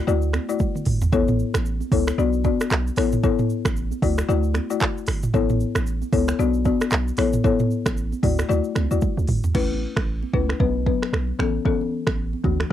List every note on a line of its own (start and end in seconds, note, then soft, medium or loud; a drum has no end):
0.07 0.39 D2 loud
0.07 0.45 A3 medium
0.07 0.45 E4 medium
0.07 0.45 F#4 medium
0.07 0.46 D5 loud
0.07 low conga medium
0.07 shaker medium
0.22 shaker medium
0.33 finger snap medium
0.33 cross-stick medium
0.33 high conga medium
0.33 shaker medium
0.49 0.66 A3 medium
0.49 0.66 E4 medium
0.49 0.66 F#4 medium
0.49 0.66 D5 medium
0.49 shaker loud
0.59 kick loud
0.59 high tom medium
0.59 shaker medium
0.75 mid tom medium
0.75 high conga medium
0.75 shaker medium
0.86 1.06 G1 medium
0.86 mid tom loud
0.86 open hi-hat medium
0.86 low conga medium
0.86 shaker medium
1.01 floor tom loud
1.01 shaker medium
1.12 1.44 A1 loud
1.12 1.62 B3 loud
1.12 1.62 E4 medium
1.12 1.62 A4 medium
1.12 1.62 C#5 loud
1.12 kick loud
1.12 low conga medium
1.12 shaker medium
1.28 mid tom loud
1.28 high conga medium
1.28 shaker medium
1.39 shaker medium
1.54 1.82 A1 loud
1.54 finger snap medium
1.54 cross-stick loud
1.54 shaker medium
1.66 shaker medium
1.80 high conga medium
1.80 shaker medium
1.92 2.11 C#2 loud
1.92 2.11 B3 medium
1.92 2.11 E4 medium
1.92 2.11 A4 medium
1.92 2.11 C#5 medium
1.92 kick medium
1.92 open hi-hat medium
1.92 high conga medium
1.92 low conga medium
1.92 shaker medium
2.07 finger snap medium
2.07 cross-stick loud
2.07 shaker loud
2.18 2.49 B1 loud
2.18 2.43 B3 loud
2.18 2.43 D4 medium
2.18 2.43 F#4 medium
2.18 2.43 D5 loud
2.18 low conga medium
2.18 shaker medium
2.33 shaker medium
2.44 2.64 B3 medium
2.44 2.64 D4 medium
2.44 2.64 F#4 medium
2.44 2.64 D5 medium
2.44 kick loud
2.44 high conga loud
2.44 shaker medium
2.60 finger snap medium
2.60 cross-stick loud
2.60 shaker loud
2.70 2.90 B1 loud
2.70 finger snap medium
2.70 cross-stick loud
2.70 clap loud
2.70 shaker medium
2.87 shaker medium
2.96 3.17 A1 loud
2.96 3.16 B3 medium
2.96 3.17 E4 medium
2.96 3.17 A4 medium
2.96 3.17 C#5 medium
2.96 finger snap medium
2.96 cross-stick loud
2.96 open hi-hat medium
2.96 low conga medium
2.96 shaker medium
3.12 mid tom medium
3.12 shaker loud
3.23 3.72 B3 loud
3.23 3.72 E4 medium
3.23 3.73 A4 medium
3.23 3.73 C#5 loud
3.23 kick loud
3.23 low conga medium
3.23 shaker medium
3.38 mid tom loud
3.38 high conga medium
3.38 shaker medium
3.50 shaker medium
3.65 3.93 A1 loud
3.65 finger snap medium
3.65 kick loud
3.65 cross-stick loud
3.65 shaker loud
3.76 shaker medium
3.91 high conga medium
3.91 shaker medium
4.02 4.22 D2 loud
4.02 4.22 A3 medium
4.02 4.22 E4 medium
4.02 4.22 F#4 medium
4.02 4.22 D5 medium
4.02 kick loud
4.02 open hi-hat medium
4.02 high conga medium
4.02 low conga medium
4.02 shaker medium
4.18 finger snap medium
4.18 cross-stick loud
4.18 shaker loud
4.28 4.60 D2 loud
4.28 4.66 A3 loud
4.28 4.67 E4 medium
4.28 4.67 F#4 medium
4.28 4.67 D5 loud
4.28 low conga medium
4.28 shaker medium
4.43 shaker medium
4.54 finger snap medium
4.54 cross-stick medium
4.54 high conga loud
4.54 shaker medium
4.70 4.87 A3 medium
4.70 4.87 E4 medium
4.70 4.87 F#4 medium
4.70 4.87 D5 medium
4.70 shaker loud
4.80 finger snap medium
4.80 kick loud
4.80 cross-stick loud
4.80 clap loud
4.80 shaker medium
4.97 shaker medium
5.07 5.27 G1 medium
5.07 finger snap medium
5.07 cross-stick medium
5.07 open hi-hat medium
5.07 low conga medium
5.07 shaker medium
5.23 mid tom medium
5.23 shaker medium
5.34 5.65 A1 loud
5.34 5.83 B3 loud
5.34 5.83 E4 medium
5.34 5.83 A4 medium
5.34 5.83 C#5 loud
5.34 kick loud
5.34 low conga medium
5.34 shaker medium
5.49 mid tom loud
5.49 high conga medium
5.49 shaker medium
5.60 shaker medium
5.75 6.03 A1 loud
5.75 finger snap medium
5.75 cross-stick loud
5.75 shaker medium
5.87 shaker medium
6.02 high conga medium
6.02 shaker medium
6.13 6.32 C#2 loud
6.13 6.32 B3 medium
6.13 6.32 E4 medium
6.13 6.32 A4 medium
6.13 6.32 C#5 medium
6.13 kick medium
6.13 open hi-hat medium
6.13 high conga medium
6.13 low conga medium
6.13 shaker medium
6.28 finger snap medium
6.28 cross-stick loud
6.28 shaker loud
6.39 6.70 B1 loud
6.39 6.64 B3 medium
6.39 6.64 D4 medium
6.39 6.64 F#4 medium
6.39 6.64 D5 loud
6.39 low conga medium
6.39 shaker medium
6.53 shaker medium
6.65 6.85 B3 medium
6.65 6.85 D4 medium
6.65 6.85 F#4 medium
6.65 6.85 D5 medium
6.65 kick loud
6.65 high conga loud
6.65 shaker medium
6.81 finger snap medium
6.81 cross-stick loud
6.81 shaker loud
6.91 7.11 B1 medium
6.91 finger snap medium
6.91 cross-stick loud
6.91 clap loud
6.91 shaker medium
7.08 shaker medium
7.17 7.38 A1 loud
7.17 7.37 B3 medium
7.17 7.37 E4 medium
7.17 7.37 A4 medium
7.17 7.38 C#5 medium
7.17 finger snap medium
7.17 cross-stick medium
7.17 open hi-hat medium
7.17 low conga medium
7.17 shaker medium
7.33 mid tom medium
7.33 shaker medium
7.44 7.93 B3 medium
7.44 7.93 E4 medium
7.44 7.93 A4 medium
7.44 7.94 C#5 loud
7.44 kick loud
7.44 low conga medium
7.44 shaker medium
7.59 mid tom loud
7.59 high conga medium
7.59 shaker medium
7.71 shaker medium
7.86 8.14 A1 loud
7.86 finger snap loud
7.86 kick loud
7.86 cross-stick loud
7.86 shaker loud
7.97 shaker medium
8.12 high conga medium
8.12 shaker medium
8.23 8.43 D2 loud
8.23 8.42 A3 medium
8.23 8.43 E4 medium
8.23 8.43 F#4 medium
8.23 8.43 D5 medium
8.23 kick medium
8.23 mid tom medium
8.23 open hi-hat medium
8.23 high conga medium
8.23 low conga medium
8.23 shaker medium
8.39 finger snap medium
8.39 cross-stick loud
8.39 shaker loud
8.49 8.61 D2 loud
8.49 8.87 A3 loud
8.49 8.87 E4 medium
8.49 8.87 F#4 medium
8.49 8.87 D5 loud
8.49 low conga medium
8.49 shaker medium
8.64 shaker soft
8.75 8.87 C#2 medium
8.75 finger snap medium
8.75 cross-stick medium
8.75 high conga medium
8.75 shaker medium
8.91 8.99 D2 medium
8.91 9.08 A3 medium
8.91 9.08 E4 medium
8.91 9.08 F#4 medium
8.91 9.08 D5 medium
8.91 shaker loud
9.01 kick loud
9.01 high tom medium
9.01 shaker medium
9.17 9.26 D2 medium
9.17 shaker medium
9.28 9.40 G1 medium
9.28 mid tom loud
9.28 open hi-hat medium
9.28 low conga medium
9.28 shaker medium
9.44 floor tom loud
9.44 shaker medium
9.55 9.86 A1 loud
9.55 10.04 A3 medium
9.55 10.04 C#4 medium
9.55 10.04 E4 medium
9.55 10.04 B4 loud
9.55 kick loud
9.55 crash medium
9.55 low conga medium
9.71 high conga medium
9.96 10.24 A1 loud
9.96 finger snap medium
9.96 kick medium
9.96 cross-stick loud
10.23 high conga medium
10.33 10.53 C#2 loud
10.33 10.53 A3 medium
10.33 10.53 C#4 medium
10.33 10.53 E4 medium
10.33 10.53 B4 medium
10.33 kick medium
10.33 high conga medium
10.49 finger snap medium
10.49 cross-stick medium
10.60 10.91 B1 loud
10.60 10.84 F#3 medium
10.60 10.85 B3 medium
10.60 10.85 D4 medium
10.60 10.85 B4 loud
10.60 kick medium
10.60 low conga medium
10.86 11.06 F#3 medium
10.86 11.06 B3 medium
10.86 11.06 D4 medium
10.86 11.06 B4 medium
10.86 kick medium
10.86 high conga medium
11.03 finger snap medium
11.03 cross-stick medium
11.13 11.32 B1 medium
11.13 finger snap medium
11.13 cross-stick loud
11.28 high conga medium
11.39 11.59 A1 medium
11.39 11.58 E3 medium
11.39 11.58 B3 medium
11.39 11.58 C#4 medium
11.39 11.59 A4 medium
11.39 finger snap medium
11.39 cross-stick medium
11.39 low conga medium
11.65 12.14 E3 medium
11.65 12.14 B3 medium
11.65 12.15 C#4 medium
11.65 12.15 A4 loud
11.65 kick loud
11.65 low conga medium
11.81 high conga medium
12.07 12.35 A1 loud
12.07 finger snap medium
12.07 kick medium
12.07 cross-stick loud
12.33 high conga medium
12.44 12.64 D2 loud
12.44 12.64 E3 medium
12.44 12.64 A3 medium
12.44 12.64 D4 medium
12.44 12.64 F#4 medium
12.44 kick medium
12.44 high conga medium
12.60 finger snap medium
12.60 cross-stick medium